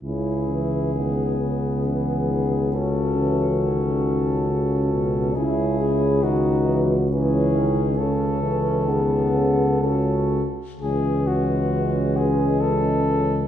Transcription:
X:1
M:3/4
L:1/8
Q:1/4=67
K:C#m
V:1 name="Flugelhorn"
G4 G2 | A6 | G2 F z G2 | A4 A z |
G F2 G A2 |]
V:2 name="French horn section"
E2 G4 | F6 | E G F2 E2 | A2 G2 F z |
C6 |]
V:3 name="Trombone section"
E2 B,4 | C4 C2 | E2 D2 C2 | C2 B,2 C z |
G,6 |]
V:4 name="Trombone" clef=bass
C, E, D, C, E, D, | C, E, D,2 C, B,, | C,2 D, E, E, D, | C, E, D, C, C, z |
E,6 |]
V:5 name="Tuba" clef=bass
C,,6- | C,,6 | C,,6- | C,,4- C,, z |
C,,6 |]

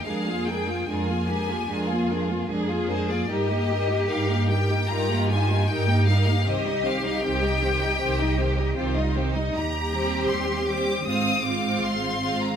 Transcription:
X:1
M:4/4
L:1/16
Q:1/4=77
K:Cm
V:1 name="Violin section"
f2 g2 a8 z2 c d | e4 f2 g2 b2 a2 g2 f2 | e2 f2 g8 z4 | b4 c'2 d'2 e'2 d'2 c'3 b |]
V:2 name="Violin section"
[AB] [FA] [AB] [FA] [AB] [FA] [AB] [FA] [AB] [FA] [AB] [FA] [AB] [FA] [AB] [FA] | [GB] [EG] [GB] [EG] [GB] [EG] [GB] [EG] [GB] [EG] [GB] [EG] [GB] [EG] [GB] [EG] | [Gc] [Ee] [Gc] [Ee] [Gc] [Ee] [Gc] [Ee] [Gc] [Ee] [Gc] [Ee] [Gc] [Ee] [Gc] [Ee] | z2 [Gc]4 [Gc]2 [Ff]2 [Ff]4 [Ff]2 |]
V:3 name="Cello section"
A4 F2 G2 F4 A4 | G8 F4 E4 | G12 F2 E2 | G8 C8 |]
V:4 name="Viola section"
[A,D] [B,F] [A,D] [B,F] [A,D] [B,F] [A,D] [B,F] [A,D] [B,F] [A,D] [B,F] [A,D] [B,F] [A,D] [B,F] | [G,E] [B,G] [G,E] [B,G] [G,E] [B,G] [G,E] [B,G] [G,E] [B,G] [G,E] [B,G] [G,E] [B,G] [G,E] [B,G] | [E,C] [G,E] [E,C] [G,E] [E,C] [G,E] [E,C] [G,E] [E,C] [G,E] [E,C] [G,E] [E,C] [G,E] [E,C] [G,E] | z2 [G,C]4 [G,C]2 [A,C]2 [A,C]4 [A,C]2 |]
V:5 name="Double bass section" clef=bass
F,,4 F,,4 F,,4 F,,4 | G,,4 G,,4 G,,4 G,,4 | C,,4 C,,4 C,,4 C,,4 | E,,4 E,,4 A,,,4 A,,,4 |]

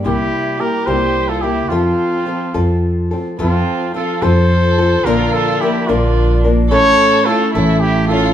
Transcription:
X:1
M:6/8
L:1/16
Q:3/8=72
K:F
V:1 name="Trumpet"
G4 B2 c3 A G2 | F8 z4 | F4 A2 c6 | B2 A2 G2 F4 z2 |
^c4 A2 A2 G2 A2 |]
V:2 name="Violin"
E4 G2 G3 F E2 | C8 z4 | C4 F2 A6 | F2 F2 E2 D4 z2 |
A4 F2 E2 E2 F2 |]
V:3 name="Nylon-string guitar"
[C,G,B,EG]4 [G,B,EG]2 [C,G,B,EG]4 [B,EG]2 | [F,CFA]4 [F,CFA]2 [F,CFA]4 [CFA]2 | [F,CFA]4 [F,CFA]2 [F,CFA]4 [CFA]2 | [B,,D,F,B,DB]4 [F,B,DB]2 [B,,D,F,B,DB]4 [F,B,DB]2 |
[A,,E,A,^CEA]4 [A,CEA]2 [A,,E,A,CEA]4 [A,CEA]2 |]
V:4 name="Upright bass" clef=bass
C,,2 z4 C,,6 | F,,2 z4 F,,6 | F,,2 z4 F,,6 | B,,,2 z4 B,,,6 |
A,,,2 z4 A,,,6 |]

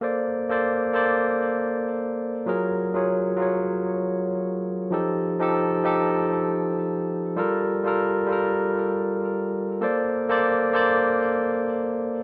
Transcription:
X:1
M:4/4
L:1/16
Q:"Swing 16ths" 1/4=98
K:Bb
V:1 name="Tine electric piano"
[B,Acd]3 [B,Acd]3 [B,Acd] z8 z | [_G,F_AB]3 [G,FA_d]3 [G,FAd]8- [G,FAd]2 | [F,EGA]3 [F,EGA]3 [F,EGA] z8 z | [G,FAB]3 [G,FAB]3 [G,FAB]8- [G,FAB]2 |
[B,Acd]3 [B,Acd]3 [B,Acd] z8 z |]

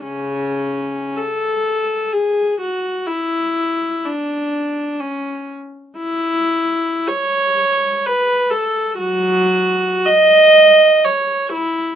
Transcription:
X:1
M:3/4
L:1/8
Q:1/4=62
K:C#phr
V:1 name="Viola"
[C,C]2 A2 G F | E2 D2 C z | [K:F#dor] E2 c2 B A | [F,F]2 d2 c E |]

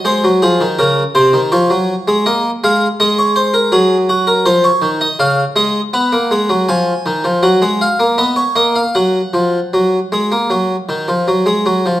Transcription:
X:1
M:4/4
L:1/16
Q:1/4=81
K:F#
V:1 name="Harpsichord"
^B2 G2 A2 B2 c4 d2 e2 | d c ^B A G2 F A B c2 d e2 d2 | f4 g4 f2 e2 d c d e | f12- f2 z2 |]
V:2 name="Harpsichord" clef=bass
G, F, E, D, C,2 ^B,, D, E, F,2 G, A,2 G,2 | G,4 F,4 E,2 D,2 C,2 G,2 | B, A, G, F, E,2 D, E, F, G,2 A, B,2 A,2 | F,2 E,2 F,2 G, A, F,2 D, E, F, G, F, E, |]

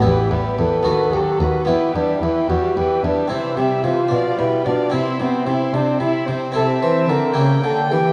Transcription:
X:1
M:6/8
L:1/8
Q:3/8=74
K:Em
V:1 name="Violin section"
g e g ^d f d | g e g e g e | e g e =f g f | c' g c' g c' g |
[K:Ador] a3 g3 |]
V:2 name="Violin section"
B G B B A B | B G B G B G | c e c d B d | e c e c e c |
[K:Ador] e3 g3 |]
V:3 name="Trumpet"
G B A2 G F | E D E F G D | E G =F2 E D | C B, C D E z |
[K:Ador] A c _B2 A G |]
V:4 name="Viola section" clef=bass
E, G, E, ^D, F, D, | E, G, E, G, E, G, | E, G, E, =F, G, F, | E C E C E C |
[K:Ador] C3 ^A,3 |]
V:5 name="Harpsichord"
[B,E]3 [B,F]3 | [B,E]6 | [CE]3 D3 | [CE]6 |
[K:Ador] [CE]3 [EG]3 |]
V:6 name="Harpsichord" clef=bass
E,, E,, E,, ^D,, D,, D,, | E,, E,, E,, E,, E,, E,, | C, C, C, B,, B,, B,, | C, C, C, C, C, C, |
[K:Ador] C, E, D, ^C, D, E, |]
V:7 name="Cello section" clef=bass
E,, E,, E,, ^D,, D,, D,, | E,, E,, E,, E,, E,, E,, | C, C, C, B,, B,, B,, | C, C, C, C, C, C, |
[K:Ador] C, E, D, ^C, D, E, |]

